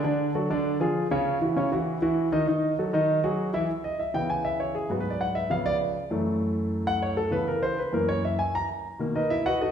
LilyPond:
<<
  \new Staff \with { instrumentName = "Grand piano" } { \time 4/4 \key cis \minor \tempo 4 = 198 <d d' d''>4 <fis fis' a'>8 <d d' d''>4 <eis eis' gis'>4 <cis cis' cis''>8~ | <cis cis' cis''>8 <e e' fis'>8 <cis cis' cis''>8 <e e' fis'>4 <e e' fis'>4 <dis dis' dis''>8 | <dis dis' dis''>4 <fis fis' a'>8 <dis dis' dis''>4 <fis fis' gis'>4 <e e' e''>8 | r8 dis''8 e''8 g''8 gis''8 e''8 cis''8 gis'8 |
\tuplet 3/2 { fis'8 b'8 d''8 } fis''8 e''8 eis''8 d''8 r4 | r2 r8 fis''8 cis''8 a'8 | b'8 ais'8 bis'8 b'8 ais'8 cis''8 e''8 gis''8 | ais''8 r4. <dis' ais' b' dis''>8 <e' e''>8 <fis' b' dis'' fis''>8 <dis' fis' a' dis''>8 | }
  \new Staff \with { instrumentName = "Grand piano" } { \clef bass \time 4/4 \key cis \minor r1 | r1 | r1 | r4. <cis e b>2~ <cis e b>8 |
<gis, fis b>2 <cis eis b>4. r8 | <fis, e a>1 | <cis e b>4. r8 <fis, e ais>4. r8 | r4. <b, dis ais>8 r2 | }
>>